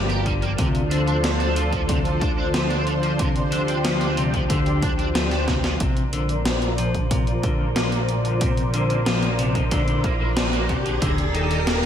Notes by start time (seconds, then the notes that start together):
Already playing: G1 F3 G4 A#4 D5
0.10 G4, closed hi-hat
0.26 D3 G3, kick, closed hi-hat
0.42 A#3, closed hi-hat
0.58 D2 C3 D3 D4 A4 C5, kick, closed hi-hat
0.75 closed hi-hat
0.91 D3 D4, closed hi-hat
1.07 D4, closed hi-hat
1.24 A3, snare, closed hi-hat
1.40 D4, closed hi-hat
1.56 D3 F3, closed hi-hat
1.73 F3, kick, closed hi-hat
1.89 C3 D3, kick, closed hi-hat
2.05 closed hi-hat
2.21 D3 D4, kick, closed hi-hat
2.38 D4
2.54 F3 A3, snare, closed hi-hat
2.71 D4, closed hi-hat
2.87 D3, closed hi-hat
3.03 F3, closed hi-hat
3.19 C3 D3 G4, kick, closed hi-hat
3.36 closed hi-hat
3.52 D3 D4, closed hi-hat
3.68 D4, closed hi-hat
3.84 F3 A3, snare, closed hi-hat
4.01 D4, closed hi-hat
4.17 C3 D3, closed hi-hat
4.34 F3, kick, closed hi-hat
4.50 D3, kick, closed hi-hat
4.66 closed hi-hat
4.82 D4, kick, closed hi-hat
4.99 D4, closed hi-hat
5.15 F3 A3, snare, closed hi-hat
5.31 D4, snare, closed hi-hat
5.48 C3 D3, kick, snare, closed hi-hat
5.64 F3, snare, closed hi-hat
5.80 A#1 A#2 C3 F3 A#4 C5 D5, kick, closed hi-hat, riser
5.97 closed hi-hat
6.13 D3 A#3, closed hi-hat
6.29 A#3, closed hi-hat
6.45 F3, snare, closed hi-hat
6.62 A#3, closed hi-hat
6.78 A#2 F3, closed hi-hat
6.94 D3, kick, closed hi-hat
7.11 A#2 C3, kick, closed hi-hat
7.27 closed hi-hat
7.43 D3 A#3, kick, closed hi-hat
7.60 A#3
7.76 F3, snare, closed hi-hat
7.92 A#3, closed hi-hat
8.09 A#2, closed hi-hat
8.25 D3, closed hi-hat
8.41 A#2 C3, kick, closed hi-hat
8.57 closed hi-hat
8.74 D3 A#3, closed hi-hat
8.90 A#3, closed hi-hat
9.06 F3, snare, closed hi-hat
9.23 A#3, closed hi-hat
9.39 A#2 C3, closed hi-hat
9.55 D3, kick, closed hi-hat
9.71 A#2 D3, kick, snare, closed hi-hat
9.88 closed hi-hat
10.04 A#3, kick, closed hi-hat
10.20 A#3
10.37 F3, snare, closed hi-hat
10.53 A#3, closed hi-hat
10.69 A#2 C3, kick, closed hi-hat
10.86 D3, closed hi-hat
11.02 D#1 D3 D#3 G4 A#4, kick, closed hi-hat
11.18 closed hi-hat
11.34 D#3 D#4, closed hi-hat
11.51 D#4, closed hi-hat
11.67 A#3, snare, closed hi-hat